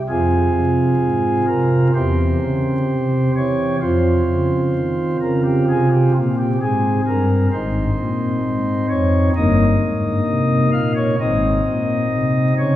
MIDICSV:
0, 0, Header, 1, 2, 480
1, 0, Start_track
1, 0, Key_signature, -4, "minor"
1, 0, Tempo, 933126
1, 46, Time_signature, 4, 2, 24, 8
1, 3405, Tempo, 917431
1, 6617, End_track
2, 0, Start_track
2, 0, Title_t, "Pipe organ"
2, 0, Program_c, 0, 19
2, 44, Note_on_c, 0, 68, 80
2, 45, Note_on_c, 0, 65, 40
2, 47, Note_on_c, 0, 53, 57
2, 47, Note_on_c, 0, 60, 40
2, 48, Note_on_c, 0, 41, 51
2, 253, Note_off_c, 0, 41, 0
2, 253, Note_off_c, 0, 53, 0
2, 280, Note_on_c, 0, 48, 53
2, 488, Note_off_c, 0, 48, 0
2, 527, Note_on_c, 0, 44, 52
2, 730, Note_off_c, 0, 44, 0
2, 746, Note_off_c, 0, 68, 0
2, 759, Note_on_c, 0, 48, 54
2, 759, Note_on_c, 0, 70, 84
2, 964, Note_off_c, 0, 48, 0
2, 964, Note_off_c, 0, 70, 0
2, 983, Note_off_c, 0, 65, 0
2, 984, Note_off_c, 0, 60, 0
2, 1001, Note_on_c, 0, 60, 47
2, 1002, Note_on_c, 0, 52, 59
2, 1003, Note_on_c, 0, 40, 63
2, 1003, Note_on_c, 0, 72, 94
2, 1004, Note_on_c, 0, 67, 44
2, 1206, Note_off_c, 0, 52, 0
2, 1207, Note_off_c, 0, 40, 0
2, 1237, Note_on_c, 0, 49, 52
2, 1444, Note_off_c, 0, 49, 0
2, 1486, Note_on_c, 0, 48, 58
2, 1691, Note_off_c, 0, 48, 0
2, 1705, Note_off_c, 0, 72, 0
2, 1730, Note_on_c, 0, 52, 50
2, 1731, Note_on_c, 0, 73, 83
2, 1934, Note_off_c, 0, 52, 0
2, 1934, Note_off_c, 0, 73, 0
2, 1945, Note_off_c, 0, 60, 0
2, 1947, Note_off_c, 0, 67, 0
2, 1963, Note_on_c, 0, 65, 38
2, 1965, Note_on_c, 0, 41, 51
2, 1965, Note_on_c, 0, 53, 58
2, 1966, Note_on_c, 0, 72, 86
2, 1969, Note_on_c, 0, 60, 42
2, 2169, Note_off_c, 0, 41, 0
2, 2169, Note_off_c, 0, 53, 0
2, 2210, Note_on_c, 0, 49, 53
2, 2410, Note_off_c, 0, 49, 0
2, 2445, Note_on_c, 0, 51, 51
2, 2646, Note_off_c, 0, 51, 0
2, 2659, Note_off_c, 0, 72, 0
2, 2683, Note_on_c, 0, 70, 80
2, 2684, Note_on_c, 0, 49, 55
2, 2784, Note_off_c, 0, 70, 0
2, 2800, Note_on_c, 0, 67, 78
2, 2886, Note_off_c, 0, 49, 0
2, 2902, Note_off_c, 0, 67, 0
2, 2924, Note_on_c, 0, 48, 61
2, 2927, Note_on_c, 0, 68, 95
2, 3027, Note_off_c, 0, 68, 0
2, 3042, Note_on_c, 0, 67, 89
2, 3128, Note_off_c, 0, 48, 0
2, 3144, Note_off_c, 0, 67, 0
2, 3157, Note_off_c, 0, 65, 0
2, 3167, Note_on_c, 0, 65, 88
2, 3168, Note_on_c, 0, 46, 60
2, 3268, Note_off_c, 0, 65, 0
2, 3282, Note_on_c, 0, 67, 88
2, 3370, Note_off_c, 0, 46, 0
2, 3384, Note_off_c, 0, 67, 0
2, 3403, Note_on_c, 0, 68, 88
2, 3406, Note_on_c, 0, 44, 60
2, 3609, Note_off_c, 0, 68, 0
2, 3611, Note_off_c, 0, 44, 0
2, 3642, Note_on_c, 0, 43, 58
2, 3644, Note_on_c, 0, 70, 91
2, 3847, Note_off_c, 0, 43, 0
2, 3848, Note_off_c, 0, 70, 0
2, 3865, Note_off_c, 0, 60, 0
2, 3878, Note_on_c, 0, 44, 61
2, 3878, Note_on_c, 0, 72, 83
2, 3879, Note_on_c, 0, 60, 43
2, 3881, Note_on_c, 0, 63, 40
2, 3882, Note_on_c, 0, 32, 60
2, 4084, Note_off_c, 0, 44, 0
2, 4087, Note_off_c, 0, 32, 0
2, 4116, Note_on_c, 0, 46, 56
2, 4324, Note_off_c, 0, 46, 0
2, 4357, Note_on_c, 0, 44, 67
2, 4565, Note_off_c, 0, 44, 0
2, 4580, Note_off_c, 0, 72, 0
2, 4594, Note_on_c, 0, 41, 58
2, 4596, Note_on_c, 0, 73, 90
2, 4802, Note_off_c, 0, 41, 0
2, 4803, Note_off_c, 0, 73, 0
2, 4821, Note_off_c, 0, 60, 0
2, 4821, Note_off_c, 0, 63, 0
2, 4840, Note_on_c, 0, 31, 60
2, 4841, Note_on_c, 0, 63, 48
2, 4842, Note_on_c, 0, 43, 68
2, 4842, Note_on_c, 0, 75, 115
2, 4844, Note_on_c, 0, 58, 48
2, 5045, Note_off_c, 0, 31, 0
2, 5046, Note_off_c, 0, 43, 0
2, 5077, Note_on_c, 0, 44, 59
2, 5283, Note_off_c, 0, 44, 0
2, 5312, Note_on_c, 0, 48, 74
2, 5519, Note_off_c, 0, 48, 0
2, 5539, Note_off_c, 0, 75, 0
2, 5553, Note_on_c, 0, 46, 59
2, 5553, Note_on_c, 0, 77, 105
2, 5658, Note_off_c, 0, 77, 0
2, 5674, Note_on_c, 0, 73, 93
2, 5759, Note_off_c, 0, 46, 0
2, 5777, Note_off_c, 0, 63, 0
2, 5778, Note_off_c, 0, 73, 0
2, 5779, Note_off_c, 0, 58, 0
2, 5802, Note_on_c, 0, 63, 49
2, 5803, Note_on_c, 0, 32, 66
2, 5803, Note_on_c, 0, 60, 45
2, 5804, Note_on_c, 0, 44, 66
2, 5804, Note_on_c, 0, 75, 97
2, 6005, Note_off_c, 0, 32, 0
2, 6006, Note_off_c, 0, 44, 0
2, 6043, Note_on_c, 0, 46, 62
2, 6247, Note_off_c, 0, 46, 0
2, 6284, Note_on_c, 0, 48, 65
2, 6488, Note_off_c, 0, 48, 0
2, 6503, Note_off_c, 0, 75, 0
2, 6526, Note_on_c, 0, 49, 54
2, 6526, Note_on_c, 0, 73, 100
2, 6617, Note_off_c, 0, 49, 0
2, 6617, Note_off_c, 0, 60, 0
2, 6617, Note_off_c, 0, 63, 0
2, 6617, Note_off_c, 0, 73, 0
2, 6617, End_track
0, 0, End_of_file